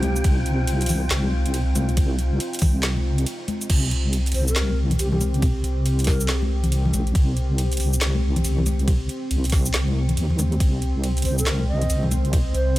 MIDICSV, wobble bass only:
0, 0, Header, 1, 2, 480
1, 0, Start_track
1, 0, Key_signature, -3, "minor"
1, 0, Tempo, 431655
1, 270, Time_signature, 4, 2, 24, 8
1, 14221, End_track
2, 0, Start_track
2, 0, Title_t, "Wobble bass"
2, 0, Program_c, 0, 39
2, 0, Note_on_c, 0, 36, 101
2, 256, Note_off_c, 0, 36, 0
2, 272, Note_on_c, 0, 36, 98
2, 1217, Note_off_c, 0, 36, 0
2, 1232, Note_on_c, 0, 36, 98
2, 2656, Note_off_c, 0, 36, 0
2, 2911, Note_on_c, 0, 36, 101
2, 3616, Note_off_c, 0, 36, 0
2, 4111, Note_on_c, 0, 36, 97
2, 4816, Note_off_c, 0, 36, 0
2, 4830, Note_on_c, 0, 36, 100
2, 5536, Note_off_c, 0, 36, 0
2, 5550, Note_on_c, 0, 36, 102
2, 6256, Note_off_c, 0, 36, 0
2, 6270, Note_on_c, 0, 36, 100
2, 7696, Note_off_c, 0, 36, 0
2, 7711, Note_on_c, 0, 34, 99
2, 7936, Note_off_c, 0, 34, 0
2, 7951, Note_on_c, 0, 36, 96
2, 8656, Note_off_c, 0, 36, 0
2, 8671, Note_on_c, 0, 36, 98
2, 9376, Note_off_c, 0, 36, 0
2, 9391, Note_on_c, 0, 36, 99
2, 10096, Note_off_c, 0, 36, 0
2, 10351, Note_on_c, 0, 36, 96
2, 10816, Note_off_c, 0, 36, 0
2, 10830, Note_on_c, 0, 36, 98
2, 11296, Note_off_c, 0, 36, 0
2, 11311, Note_on_c, 0, 39, 97
2, 11776, Note_off_c, 0, 39, 0
2, 11791, Note_on_c, 0, 36, 96
2, 12496, Note_off_c, 0, 36, 0
2, 12511, Note_on_c, 0, 36, 102
2, 13216, Note_off_c, 0, 36, 0
2, 13230, Note_on_c, 0, 36, 100
2, 13936, Note_off_c, 0, 36, 0
2, 13950, Note_on_c, 0, 36, 104
2, 14221, Note_off_c, 0, 36, 0
2, 14221, End_track
0, 0, End_of_file